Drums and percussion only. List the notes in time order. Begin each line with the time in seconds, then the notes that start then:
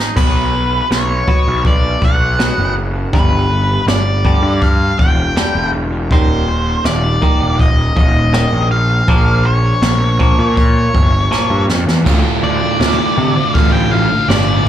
0.00 snare
0.17 kick, crash
0.91 snare, open hi-hat
1.28 kick
1.65 kick, open hi-hat
2.02 kick
2.39 snare, open hi-hat
3.13 kick, open hi-hat
3.88 snare, open hi-hat
4.25 kick
4.62 kick, open hi-hat
4.99 kick
5.36 snare, open hi-hat
6.11 kick, open hi-hat
6.85 snare, open hi-hat
7.22 kick
7.59 kick, open hi-hat
7.97 kick
8.33 snare, open hi-hat
9.08 kick, open hi-hat
9.82 snare, open hi-hat
10.20 kick
10.57 kick, open hi-hat
10.95 kick
11.32 snare
11.70 snare
11.89 snare
12.06 kick, crash
12.80 snare, open hi-hat
13.55 kick, open hi-hat
14.29 snare, open hi-hat